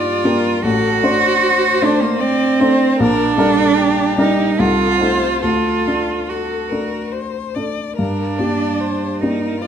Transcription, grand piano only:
0.00 0.68 G2 medium
0.00 0.24 A#3 soft
0.00 0.24 D4 soft
0.00 0.25 G4 soft
0.24 0.61 A#3 soft
0.24 0.60 D4 soft
0.24 0.61 G4 soft
0.64 1.02 A1 medium
1.03 1.78 A3 medium
1.03 1.79 D4 medium
1.03 1.79 C5 medium
1.82 2.56 A3 soft
1.82 2.56 D4 soft
1.82 2.57 C5 medium
2.60 2.96 A3 soft
2.60 2.96 D4 medium
2.60 2.96 C5 medium
3.00 3.38 A#1 medium
3.38 4.14 G3 medium
3.38 4.14 D4 medium
3.38 4.15 A#4 medium
4.18 4.55 G3 medium
4.18 4.55 D4 medium
4.18 4.56 A#4 medium
4.59 5.00 C2 medium
5.00 5.39 A3 soft
5.00 5.40 D#4 soft
5.00 5.40 A4 soft
5.43 5.85 D2 soft
5.87 6.68 A3 soft
5.87 6.68 D4 soft
5.87 6.68 A4 soft
6.71 7.52 A3 soft
6.71 7.53 D4 soft
6.71 7.53 A4 soft
7.56 7.95 A3 soft
7.56 7.95 D4 soft
7.56 7.95 A4 soft
7.99 8.39 G2 soft
8.39 9.18 A#3 soft
8.39 9.18 D4 soft
8.39 9.18 G4 soft
9.23 9.67 A#3 soft
9.23 9.67 D4 soft
9.23 9.67 G4 soft

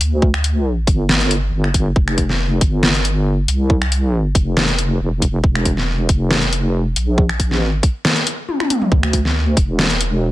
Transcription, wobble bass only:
0.01 0.86 D2 loud
0.87 1.51 G1 loud
1.53 1.95 G1 medium
1.96 2.60 F1 loud
2.61 3.47 G1 loud
3.48 4.34 C2 loud
4.35 4.99 F1 loud
5.00 5.42 F1 loud
5.44 6.07 E1 loud
6.09 6.94 F1 loud
6.96 7.56 A#1 loud
7.56 7.82 A1 loud
8.92 9.55 D2 loud
9.57 10.32 E1 loud

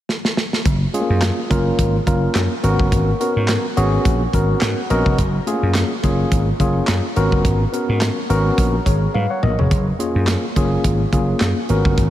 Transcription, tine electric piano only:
0.93 1.01 G#3 medium
0.93 1.39 C#4 medium
0.93 1.39 F4 medium
0.93 1.39 G#4 medium
1.00 1.42 A#3 medium
1.50 1.95 A#3 medium
1.50 1.95 C#4 medium
1.50 1.95 F4 medium
1.50 1.95 A#4 medium
2.06 2.52 A#3 medium
2.06 2.52 C#4 medium
2.06 2.52 F4 medium
2.06 2.52 A#4 medium
2.63 3.10 B3 medium
2.63 3.10 C#4 medium
2.63 3.10 F#4 medium
2.63 3.10 A#4 medium
3.20 3.65 B3 medium
3.20 3.65 C#4 medium
3.20 3.65 F#4 medium
3.20 3.65 A#4 medium
3.77 4.21 B3 medium
3.77 4.22 C#4 medium
3.77 4.22 F#4 medium
3.77 4.22 G#4 loud
4.33 4.78 B3 medium
4.33 4.78 C#4 medium
4.33 4.79 F#4 medium
4.33 4.79 A#4 medium
4.62 4.88 F#5 medium
4.90 5.18 B3 medium
4.90 5.18 C#4 medium
4.90 5.19 F#4 medium
4.90 5.19 A#4 loud
4.90 5.17 D#5 medium
5.46 5.54 A3 medium
5.46 5.91 C#4 medium
5.46 5.92 F4 medium
5.46 5.92 G#4 medium
5.53 5.95 A#3 medium
6.03 6.48 A#3 medium
6.03 6.48 C#4 medium
6.03 6.48 F4 medium
6.03 6.48 G#4 medium
6.60 7.05 A#3 medium
6.60 7.05 C#4 medium
6.60 7.05 F4 medium
6.60 7.05 G#4 medium
7.16 7.63 B3 medium
7.16 7.63 C#4 medium
7.16 7.63 F#4 medium
7.16 7.63 A#4 loud
7.73 8.18 B3 medium
7.73 8.18 C#4 medium
7.73 8.18 F#4 medium
7.73 8.18 A#4 medium
8.29 8.74 B3 loud
8.29 8.74 C#4 medium
8.29 8.75 F#4 medium
8.29 8.75 A#4 loud
8.86 9.13 G#4 soft
8.86 9.13 C#5 medium
9.14 9.30 B4 medium
9.14 9.29 F5 medium
9.30 9.42 C#5 medium
9.30 9.42 F#5 medium
9.43 9.58 A#4 medium
9.43 9.58 D#5 medium
9.59 9.86 G#4 medium
9.59 9.86 C#5 medium
9.99 10.44 A#3 medium
9.99 10.44 C#4 medium
9.99 10.44 F4 medium
9.99 10.44 G#4 medium
10.56 11.01 A#3 medium
10.56 11.01 C#4 medium
10.56 11.01 F4 medium
10.56 11.01 G#4 medium
11.13 11.57 A#3 medium
11.13 11.58 C#4 medium
11.13 11.58 F4 medium
11.13 11.58 G#4 medium
11.69 12.10 B3 medium
11.69 12.10 C#4 medium
11.69 12.10 F#4 medium
11.69 12.10 A#4 medium

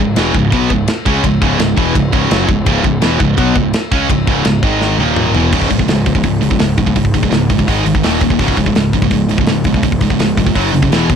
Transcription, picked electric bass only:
0.00 0.15 C#1 medium
0.17 0.33 E1 medium
0.35 0.51 C#1 medium
0.52 0.69 B1 medium
0.71 0.87 C#1 medium
1.06 1.23 C#2 loud
1.24 1.41 C#1 medium
1.42 1.58 C#1 medium
1.59 1.76 C#1 medium
1.77 1.94 E1 medium
1.95 2.12 C#1 medium
2.13 2.30 C#1 medium
2.31 2.48 F#1 loud
2.49 2.65 C#1 medium
2.66 2.83 C#1 medium
2.84 3.01 C#1 medium
3.03 3.19 E1 loud
3.20 3.37 C#1 medium
3.38 3.55 B1 loud
3.56 3.72 C#1 medium
3.92 4.08 C#2 medium
4.10 4.26 C#1 medium
4.27 4.44 C#1 medium
4.45 4.62 C#1 medium
4.63 4.96 G#1 loud
4.99 5.32 D#1 medium
5.34 5.51 E1 medium
5.53 5.70 C#1 medium
5.71 5.88 C#1 medium
5.88 6.22 C#1 medium
6.24 6.41 C#1 medium
6.43 6.59 C#1 medium
6.60 6.77 C#1 medium
6.78 6.95 B1 medium
6.96 7.13 C#1 medium
7.14 7.31 C#1 medium
7.32 7.49 C#1 medium
7.50 7.67 G1 medium
7.68 7.85 G#1 medium
7.85 8.03 G#1 medium
8.04 8.38 D#1 medium
8.39 8.57 C#1 medium
8.57 8.75 C#1 medium
8.76 9.10 C#1 medium
9.11 9.28 C#1 medium
9.29 9.46 C#1 medium
9.47 9.64 C#1 medium
9.65 9.82 B1 medium
9.83 10.00 C#1 medium
10.01 10.18 C#1 medium
10.19 10.36 C#1 medium
10.38 10.55 F1 medium
10.56 10.73 F#1 medium
10.73 10.90 F#1 medium
10.91 11.16 E1 medium

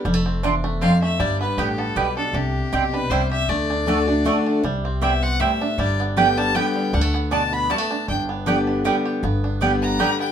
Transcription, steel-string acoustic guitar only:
0.06 0.44 F2 medium
0.44 0.80 E2 medium
0.82 1.18 F2 medium
1.20 1.93 G2 medium
1.59 1.95 A2 medium
1.96 2.33 B2 medium
2.35 3.07 C3 medium
2.72 3.09 B2 medium
3.11 3.47 C3 medium
3.49 3.85 D3 medium
3.86 4.06 D3 medium
3.86 4.07 A3 medium
3.86 4.07 D4 medium
3.86 4.05 F#4 loud
4.07 4.25 D4 soft
4.07 4.24 F#4 medium
4.24 4.61 D3 medium
4.24 4.62 A3 medium
4.24 4.62 D4 loud
4.24 4.63 F#4 medium
4.63 5.37 C3 medium
5.01 5.38 B3 medium
5.39 5.76 A2 medium
5.79 6.52 G2 medium
6.17 6.53 D3 medium
6.17 6.54 G3 medium
6.17 6.54 B3 loud
6.17 6.54 G4 loud
6.54 6.91 D3 medium
6.54 6.92 G3 loud
6.54 6.92 B3 medium
6.54 6.92 G4 loud
6.94 7.67 D3 medium
7.32 7.68 B2 medium
7.70 8.07 A2 medium
8.09 8.81 G2 medium
8.46 8.83 D3 medium
8.46 8.83 G3 medium
8.46 8.84 B3 loud
8.46 8.84 G4 loud
8.84 9.21 D3 medium
8.84 9.21 G3 loud
8.84 9.22 B3 medium
8.84 9.22 G4 loud
9.23 9.96 G2 medium
9.61 9.97 D3 medium
9.61 9.98 G3 medium
9.61 9.98 B3 loud
9.61 9.99 G4 medium
9.99 10.32 D3 medium
9.99 10.32 G3 medium
9.99 10.32 B3 loud
9.99 10.32 G4 medium

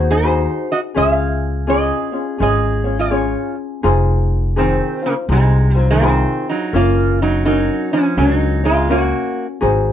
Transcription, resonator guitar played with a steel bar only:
0.00 0.13 G#4 medium
0.11 0.66 D#4 medium
0.11 0.72 C5 medium
0.72 0.79 F#4 medium
0.72 0.79 D#5 medium
0.97 1.65 G#4 medium
0.97 1.69 F5 medium
1.70 2.37 G#4 medium
1.70 2.41 D#5 medium
2.42 2.96 G#4 medium
2.42 3.00 D#5 medium
2.99 3.54 F4 medium
2.99 3.55 C#5 medium
4.58 5.01 D#3 medium
4.58 5.05 C4 medium
5.06 5.13 C#3 medium
5.06 5.13 A#3 medium
5.32 5.86 C3 medium
5.32 5.79 G#3 medium
5.79 5.90 F#3 medium
5.91 6.45 D#3 medium
5.91 6.50 C4 loud
6.49 6.73 F#3 medium
6.49 6.75 D#4 medium
6.76 7.18 A#3 medium
6.76 7.22 F4 medium
7.22 7.46 F#3 medium
7.22 7.44 D#4 medium
7.46 7.89 F#3 medium
7.46 7.93 D#4 loud
7.93 8.17 F3 medium
7.93 8.18 C#4 medium
8.18 8.61 F#3 medium
8.18 8.36 D4 loud
8.36 8.66 D#4 loud
8.65 8.89 G#3 medium
8.65 8.89 F4 loud
8.91 9.46 A#3 medium
8.91 9.46 F#4 medium

